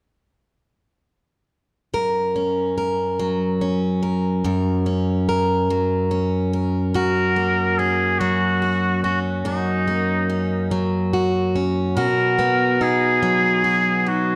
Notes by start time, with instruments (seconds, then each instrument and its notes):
1.94 steel-string acoustic guitar F#2 A#4
2.36 steel-string acoustic guitar C#4
2.78 steel-string acoustic guitar A#4
3.19 steel-string acoustic guitar F#3
3.61 steel-string acoustic guitar C#4
4.03 steel-string acoustic guitar A#4
4.44 steel-string acoustic guitar F#2 A#4
4.86 steel-string acoustic guitar C#4
5.29 steel-string acoustic guitar A#4
5.70 steel-string acoustic guitar F#3
6.11 steel-string acoustic guitar C#4
6.53 steel-string acoustic guitar A#4
6.94 steel-string acoustic guitar F#2 F#4, muted trumpet A#4
7.36 steel-string acoustic guitar A#3
7.78 steel-string acoustic guitar C#4, muted trumpet G#4
8.19 steel-string acoustic guitar F#3, muted trumpet F#4
8.62 steel-string acoustic guitar F#4
9.04 steel-string acoustic guitar C#4, muted trumpet F#4
9.45 steel-string acoustic guitar F#2 F#4, muted trumpet D#4
9.88 steel-string acoustic guitar A#3
10.30 steel-string acoustic guitar C#4
10.71 steel-string acoustic guitar F#3
11.13 steel-string acoustic guitar F#4
11.55 steel-string acoustic guitar C#4
11.97 steel-string acoustic guitar B2 F#4, muted trumpet A#4
12.39 steel-string acoustic guitar B3
12.81 steel-string acoustic guitar D#4, muted trumpet G#4
13.23 steel-string acoustic guitar F#3
13.64 steel-string acoustic guitar F#4
14.06 steel-string acoustic guitar D#4, muted trumpet F#4